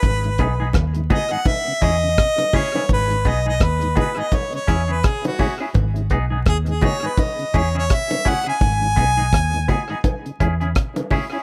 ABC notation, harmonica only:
X:1
M:4/4
L:1/16
Q:"Swing 16ths" 1/4=84
K:G#m
V:1 name="Harmonica"
B4- B z d f e2 d4 c2 | B2 d d B2 B d c c2 B G F2 z | z4 G G c B d2 c c e2 f g- | g8- g z6 z |]